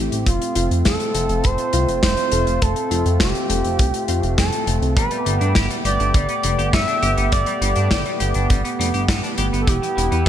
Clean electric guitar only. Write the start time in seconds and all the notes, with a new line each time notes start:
4.97 G3
5.11 G3
5.26 G3
5.41 D4
5.56 G4
5.70 G3
5.85 G4
6.00 D4
6.15 G3
6.29 B3
6.44 G3
6.59 G4
6.73 B3
6.88 D4
7.03 G4
7.17 B3
7.32 G3
7.47 G3
7.62 G3
7.76 D4
7.91 G4
8.06 G3
8.20 G4
8.35 D4
8.50 G3
8.64 B3
8.79 G3
8.94 G4
9.09 B3
9.23 D4
9.38 G4
9.53 B3
9.68 E3
9.82 E3
9.97 E3
10.12 B3